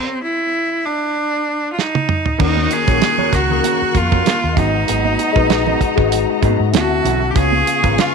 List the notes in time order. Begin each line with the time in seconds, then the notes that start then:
Already playing: C4
0.23 E4
0.85 D4
1.73 F4
1.79 D#4, snare
1.95 high tom
2.09 mid tom
2.26 floor tom
2.38 D#2 D#3 A#3 C#4 D#4 F#4 A#4 C#6 F#6, kick, crash
2.57 high conga
2.70 G#4, muted clean electric guitar stroke, closed hi-hat, muted conga
2.87 A#1 D#3 A#3 C#4 F4 F#4 C#5, kick, closed hi-hat, high conga
2.97 F#4
3.02 snare, closed hi-hat
3.18 A#3 C#4 F#4 C#5, low conga
3.33 C#2 F#4, muted clean electric guitar stroke, kick, snare, closed hi-hat, muted conga
3.47 D#3 A#3 C#4, muted clean electric guitar stroke, low conga
3.52 G#4
3.64 A#3 C#4 F#4 A#4, closed hi-hat, muted conga
3.82 muted fingered electric bass stroke
3.95 F2 F4, muted clean electric guitar stroke, kick, closed hi-hat, muted conga, high conga
4.12 A#3 C#4 F#4 A#4, kick
4.26 muted clean electric guitar stroke, snare, closed hi-hat, high conga
4.44 D#2, muted clean electric guitar stroke
4.55 G#1 F#3 G#3 B3 D#4 F#4 D#5 A#5, kick, closed hi-hat, muted conga, low conga
4.59 D#4 G#4 B4
4.75 muted clean electric guitar stroke
4.88 G#1 F#3 B3 D#4 G#4, closed hi-hat, muted conga
5.05 high conga
5.19 muted clean electric guitar stroke, closed hi-hat, muted conga
5.33 A#1 G#3 D#4 F#4 A#4 B4, kick, high conga
5.37 F#3 B3
5.50 muted clean electric guitar stroke, snare, closed hi-hat
5.67 F#3 B3 D#4 A#4, low conga
5.81 muted fingered electric bass stroke, muted clean electric guitar stroke, kick, closed hi-hat
5.96 G#1 G#3 D#4 F#4 B4, muted clean electric guitar stroke, kick, low conga
6.12 muted clean electric guitar stroke, closed hi-hat
6.30 muted clean electric guitar stroke
6.42 G#2 F#3 G#3 B3 D#4 F#4 G#4 B4, kick, closed hi-hat, muted conga, high conga
6.60 G#2, muted clean electric guitar stroke
6.72 D2 D3 C4 E4 F4 F#4 E5 A5, muted clean electric guitar stroke, snare, closed hi-hat, muted conga, high conga
6.82 F#4
6.91 muted clean electric guitar stroke
7.05 B1 F#3 C4 E4 A4, closed hi-hat, muted conga, low conga
7.22 muted clean electric guitar stroke
7.31 C#3 C#4 G4
7.35 C#2 F3 B3 C#4 F4 G#4 B4 F5 C#6, kick, closed hi-hat, muted conga
7.52 high conga
7.67 muted clean electric guitar stroke, closed hi-hat, muted conga
7.81 G#1 C#3 F3 B3 C#4 F4 A#4 B4, kick, closed hi-hat
7.98 F4, snare, closed hi-hat, muted conga